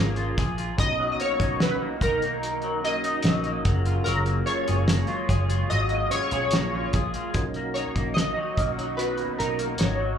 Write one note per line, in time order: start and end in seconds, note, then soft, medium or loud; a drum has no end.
0.00 0.30 G#1 medium
0.00 0.99 F#3 medium
0.00 1.19 A#3 medium
0.00 0.43 C#4 medium
0.00 0.16 F4 medium
0.00 0.44 F4 medium
0.00 0.38 G#4 medium
0.00 0.44 G#4 medium
0.00 0.44 A#4 medium
0.16 0.57 F4 medium
0.16 closed hi-hat soft
0.38 0.71 A#1 medium
0.38 0.87 G#4 medium
0.38 kick loud
0.38 snare soft
0.38 closed hi-hat medium
0.58 0.87 F4 medium
0.58 closed hi-hat soft
0.77 1.12 B1 loud
0.77 2.42 B2 medium
0.77 3.62 D#3 medium
0.77 7.30 F#3 medium
0.77 1.96 C#4 medium
0.77 3.63 D#4 medium
0.77 1.96 D#4 medium
0.77 1.96 F#4 medium
0.77 1.11 D#5 loud
0.77 1.97 A#5 medium
0.77 kick loud
0.77 closed hi-hat medium
1.00 1.60 F#3 medium
1.12 1.19 D#5 medium
1.20 1.81 A#3 medium
1.20 1.62 C#5 loud
1.20 closed hi-hat medium
1.40 1.73 B1 medium
1.40 2.01 D#4 medium
1.40 kick loud
1.40 closed hi-hat medium
1.60 2.64 F#3 medium
1.60 1.76 B4 medium
1.60 snare loud
1.60 closed hi-hat medium
1.82 2.24 A#3 medium
2.01 3.21 B1 loud
2.01 3.03 D#4 medium
2.01 2.87 A#4 medium
2.01 kick medium
2.01 closed hi-hat medium
2.22 2.85 A#3 medium
2.22 closed hi-hat soft
2.43 closed hi-hat medium
2.62 3.26 F#3 soft
2.62 closed hi-hat soft
2.83 3.46 A#3 medium
2.83 3.64 C#4 medium
2.83 3.66 D#4 medium
2.83 3.66 F#4 medium
2.83 3.66 A#4 medium
2.83 3.62 D#5 medium
2.83 closed hi-hat medium
3.04 3.74 D#4 medium
3.04 closed hi-hat medium
3.23 3.57 A#1 medium
3.23 3.66 F#3 medium
3.23 snare loud
3.23 closed hi-hat medium
3.44 4.26 A#3 medium
3.44 closed hi-hat soft
3.65 3.98 F#1 medium
3.65 4.06 F#3 medium
3.65 7.31 G#3 medium
3.65 4.97 C#4 medium
3.65 7.31 F4 medium
3.65 4.97 F4 medium
3.65 4.97 G#4 medium
3.65 4.98 A#4 medium
3.65 kick loud
3.65 closed hi-hat medium
3.85 4.46 F4 medium
3.85 closed hi-hat soft
4.04 4.40 F#1 loud
4.04 5.70 F#3 medium
4.04 4.18 A#4 medium
4.04 closed hi-hat medium
4.26 4.87 A#3 medium
4.26 closed hi-hat soft
4.46 5.06 F4 medium
4.46 5.74 C#5 medium
4.46 closed hi-hat medium
4.68 5.02 F#1 medium
4.68 5.27 G#4 medium
4.68 closed hi-hat medium
4.87 5.90 A#3 medium
4.87 snare loud
4.87 closed hi-hat loud
5.07 5.48 F4 medium
5.07 closed hi-hat soft
5.29 5.62 F#1 loud
5.29 6.32 G#4 medium
5.29 kick medium
5.29 closed hi-hat medium
5.49 6.11 F4 medium
5.49 closed hi-hat medium
5.70 6.04 G#1 medium
5.70 8.37 F#3 medium
5.70 6.13 D#5 loud
5.70 closed hi-hat medium
5.89 6.53 A#3 soft
5.89 closed hi-hat soft
6.10 6.99 C#4 medium
6.10 6.99 F4 medium
6.10 6.73 F4 medium
6.10 7.00 G#4 medium
6.10 6.89 C#5 medium
6.10 7.00 C#5 medium
6.10 muted picked electric bass stroke soft
6.10 closed hi-hat medium
6.31 6.49 B1 loud
6.31 6.93 G#4 medium
6.31 closed hi-hat medium
6.51 6.86 A#1 medium
6.51 7.56 A#3 medium
6.51 snare loud
6.51 closed hi-hat loud
6.74 7.14 F4 medium
6.93 7.10 A#1 medium
6.93 7.43 G#4 medium
6.93 kick medium
6.93 closed hi-hat medium
7.14 7.44 F4 medium
7.14 closed hi-hat soft
7.33 7.84 B1 loud
7.33 10.18 D#3 medium
7.33 10.18 F#3 medium
7.33 8.22 C#4 medium
7.33 10.18 D#4 medium
7.33 8.23 D#4 medium
7.33 10.18 F#4 medium
7.33 8.23 F#4 medium
7.33 8.24 A#4 loud
7.33 kick loud
7.33 closed hi-hat medium
7.54 7.96 A#3 medium
7.54 closed hi-hat soft
7.74 8.16 D#4 medium
7.74 7.88 C#5 medium
7.74 closed hi-hat medium
7.95 8.29 A#1 medium
7.95 8.58 A#3 medium
7.95 kick medium
7.95 closed hi-hat soft
8.14 9.38 D#4 medium
8.14 9.00 D#5 medium
8.14 snare loud
8.18 closed hi-hat loud
8.37 8.78 F#3 medium
8.57 9.23 B1 loud
8.57 9.18 A#3 medium
8.57 9.75 C#4 medium
8.57 9.76 D#4 medium
8.57 9.77 F#4 medium
8.57 9.77 A#5 medium
8.57 kick medium
8.57 closed hi-hat medium
8.78 9.99 F#3 medium
8.78 closed hi-hat soft
8.97 10.18 B2 medium
8.97 9.40 B4 medium
8.97 closed hi-hat medium
9.17 9.59 A#3 soft
9.17 closed hi-hat soft
9.39 9.73 B1 medium
9.39 9.78 D#4 medium
9.39 9.81 A#4 medium
9.39 closed hi-hat medium
9.59 10.18 A#3 medium
9.59 closed hi-hat medium
9.78 10.13 G#1 medium
9.78 10.18 D#4 medium
9.78 10.18 C#5 medium
9.78 snare loud
9.78 closed hi-hat medium
10.00 10.18 F#3 medium